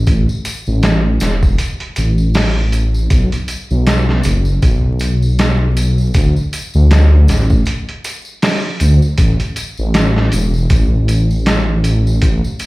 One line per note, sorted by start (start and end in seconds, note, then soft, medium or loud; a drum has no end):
0.07 0.26 A1 medium
0.07 kick loud
0.07 closed hi-hat medium
0.07 tambourine medium
0.29 tambourine soft
0.45 closed hi-hat medium
0.45 tambourine medium
0.67 1.18 A1 loud
0.67 tambourine soft
0.83 snare loud
0.83 closed hi-hat medium
0.83 tambourine soft
1.20 1.55 E1 medium
1.20 snare soft
1.20 closed hi-hat medium
1.20 tambourine loud
1.43 kick medium
1.43 tambourine soft
1.58 closed hi-hat medium
1.58 tambourine soft
1.80 closed hi-hat soft
1.96 3.08 A1 loud
1.96 closed hi-hat medium
1.96 tambourine medium
2.18 tambourine soft
2.34 snare loud
2.34 open hi-hat medium
2.34 tambourine soft
2.72 closed hi-hat medium
2.72 tambourine medium
2.94 tambourine soft
3.10 3.30 B1 medium
3.10 kick loud
3.10 closed hi-hat medium
3.10 tambourine medium
3.32 closed hi-hat soft
3.32 tambourine soft
3.48 closed hi-hat medium
3.48 tambourine medium
3.71 4.22 B1 loud
3.71 tambourine soft
3.87 snare loud
3.87 closed hi-hat medium
3.87 tambourine medium
4.09 snare soft
4.23 4.59 F#1 medium
4.23 closed hi-hat medium
4.23 tambourine medium
4.45 tambourine soft
4.62 6.12 B1 medium
4.62 kick loud
4.62 closed hi-hat medium
4.62 tambourine medium
4.99 closed hi-hat medium
4.99 tambourine medium
5.22 tambourine soft
5.39 snare loud
5.39 closed hi-hat medium
5.39 tambourine soft
5.77 closed hi-hat medium
5.77 tambourine medium
5.98 tambourine soft
6.14 6.34 D2 medium
6.14 kick loud
6.14 closed hi-hat medium
6.14 tambourine medium
6.36 tambourine soft
6.53 closed hi-hat medium
6.53 tambourine medium
6.74 7.26 D2 loud
6.74 tambourine soft
6.91 snare loud
6.91 closed hi-hat medium
6.91 tambourine soft
7.28 7.63 A1 loud
7.28 snare soft
7.28 closed hi-hat medium
7.28 tambourine medium
7.50 kick medium
7.50 tambourine soft
7.65 closed hi-hat medium
7.65 tambourine soft
7.89 closed hi-hat soft
8.04 closed hi-hat medium
8.04 tambourine medium
8.25 tambourine soft
8.42 snare loud
8.42 open hi-hat medium
8.42 tambourine soft
8.80 9.00 D2 medium
8.80 closed hi-hat medium
8.80 tambourine medium
9.02 tambourine soft
9.18 9.38 A1 medium
9.18 kick loud
9.18 closed hi-hat medium
9.18 tambourine medium
9.40 closed hi-hat soft
9.40 tambourine soft
9.56 closed hi-hat medium
9.56 tambourine medium
9.77 10.30 A1 loud
9.77 tambourine soft
9.94 snare loud
9.94 closed hi-hat medium
9.94 tambourine medium
10.16 snare soft
10.32 10.67 E1 medium
10.32 closed hi-hat medium
10.32 tambourine medium
10.54 tambourine soft
10.70 12.19 A1 loud
10.70 kick loud
10.70 closed hi-hat medium
10.70 tambourine soft
11.08 closed hi-hat medium
11.08 tambourine medium
11.31 tambourine soft
11.46 snare loud
11.46 closed hi-hat medium
11.46 tambourine soft
11.84 closed hi-hat medium
11.84 tambourine medium
12.07 tambourine soft
12.22 12.41 A1 medium
12.22 kick loud
12.22 closed hi-hat medium
12.22 tambourine medium
12.44 tambourine soft
12.59 closed hi-hat medium
12.59 tambourine medium